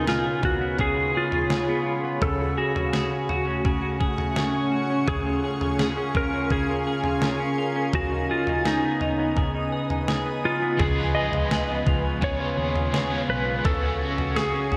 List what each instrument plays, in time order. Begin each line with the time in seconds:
Already playing: clean electric guitar C#3 F4, ambient pad G#4 C#5 F5 B5
0.07 electric slide guitar F4, clean electric guitar G#4, snare
0.25 clean electric guitar B3
0.43 electric slide guitar F#4, kick, floor tom
0.61 clean electric guitar B3
0.79 clean electric guitar C#3 G#4, electric slide guitar G#4, kick, floor tom
0.97 clean electric guitar F4
1.15 electric slide guitar F4, clean electric guitar G#4
1.32 clean electric guitar F4, floor tom
1.50 clean electric guitar G#4, snare
1.69 clean electric guitar B3
1.86 clean electric guitar F4
2.04 clean electric guitar B3
2.21 clean electric guitar C#3, ambient pad A3 C#4 F#5 G#5 C#6, electric slide guitar A4, kick, floor tom
2.39 clean electric guitar F#4
2.57 electric slide guitar F#4, clean electric guitar G#4
2.75 clean electric guitar F#4, floor tom
2.93 clean electric guitar G#4, snare
3.11 clean electric guitar C#4
3.29 clean electric guitar F#4, floor tom
3.47 clean electric guitar C#4
3.65 clean electric guitar C#3 G#4, kick, floor tom
3.82 clean electric guitar F#4
4.00 clean electric guitar G#4, kick
4.18 clean electric guitar F#4, floor tom
4.36 clean electric guitar G#4, snare
4.54 clean electric guitar C#4
4.72 clean electric guitar F#4
4.90 clean electric guitar C#4
5.07 clean electric guitar C#3 G#4, electric slide guitar G#4, ambient pad A#4 F5, kick, floor tom
5.26 clean electric guitar F4
5.44 clean electric guitar G#4
5.61 clean electric guitar F4, floor tom
5.79 clean electric guitar G#4, snare
5.97 clean electric guitar C#4
6.15 clean electric guitar F4, electric slide guitar A#4, kick, floor tom
6.33 clean electric guitar C#4
6.50 clean electric guitar C#3 G#4, electric slide guitar G#4, kick, floor tom
6.69 clean electric guitar F4
6.87 clean electric guitar G#4
7.04 clean electric guitar F4, floor tom
7.22 clean electric guitar G#4, snare
7.40 clean electric guitar C#4
7.58 clean electric guitar F4
7.76 clean electric guitar C#4
7.93 clean electric guitar C#3 G#4, electric slide guitar F#4, ambient pad B4 D#5 D#6, kick, floor tom
8.12 clean electric guitar D#4
8.30 electric slide guitar F4, clean electric guitar G#4
8.47 clean electric guitar D#4, floor tom
8.65 electric slide guitar D#4, clean electric guitar G#4, snare
8.84 clean electric guitar B3
9.01 clean electric guitar D#4, floor tom
9.19 clean electric guitar B3
9.37 clean electric guitar C#3 G#4, kick, floor tom
9.55 clean electric guitar D#4
9.72 clean electric guitar G#4
9.90 clean electric guitar D#4, floor tom
10.08 clean electric guitar G#4, snare
10.26 clean electric guitar B3
10.44 clean electric guitar D#4, electric slide guitar F4
10.62 clean electric guitar B3
10.77 fingered electric bass C#2, overdriven electric guitar C#3 F3 G#3, clean electric guitar C#3 G#4, electric slide guitar G#4, ambient pad F5 G#5 C#6, kick, floor tom
10.82 overdriven electric guitar B3 F4 G#4
10.98 clean electric guitar F4
11.15 clean electric guitar G#4, electric slide guitar D#5
11.32 fingered electric bass C#2, clean electric guitar F4, floor tom
11.51 clean electric guitar G#4, snare
11.70 clean electric guitar B3
11.86 fingered electric bass C#2, clean electric guitar F4, kick, floor tom
12.04 clean electric guitar B3
12.21 clean electric guitar C#3 G#4, overdriven electric guitar G#3 B3 F4, electric slide guitar C#5, kick, floor tom
12.27 overdriven electric guitar G#4
12.40 clean electric guitar F4
12.57 fingered electric bass D#2, clean electric guitar G#4
12.76 clean electric guitar F4, floor tom
12.92 overdriven electric guitar G#3 B3 F4, clean electric guitar G#4, snare
12.97 overdriven electric guitar G#4
13.12 clean electric guitar B3
13.29 fingered electric bass B1, clean electric guitar F4, electric slide guitar B4
13.47 clean electric guitar B3
13.59 electric slide guitar B4
13.64 fingered electric bass C#2, overdriven electric guitar C#3 A3 C#4 F#4, clean electric guitar C#3, ambient pad A3 F#5, electric slide guitar A4, kick, floor tom
13.83 clean electric guitar F#4
14.02 overdriven electric guitar C#4 F#4
14.18 clean electric guitar F#4, floor tom
14.36 electric slide guitar G#4, clean electric guitar G#4, snare
14.54 clean electric guitar C#4
14.71 fingered electric bass C#2, clean electric guitar F#4, floor tom